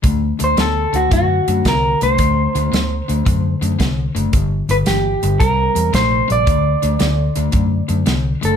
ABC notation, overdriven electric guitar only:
X:1
M:4/4
L:1/8
Q:"Swing" 1/4=112
K:Dmix
V:1 name="Overdriven electric guitar" clef=bass
[D,A,] [D,A,] [D,B,] [D,A,] [D,A,] [D,A,] [D,B,] [D,A,] | [D,A,] [D,A,] [D,B,] [D,A,] [D,A,] [D,A,] [D,B,] [D,A,] | [G,,D,] [G,,D,] [G,,E,] [G,,D,] [C,G,] [C,G,] [C,A,] [C,G,] | [D,A,] [D,A,] [D,B,] [D,A,] [D,A,] [D,A,] [D,B,] [D,A,] |]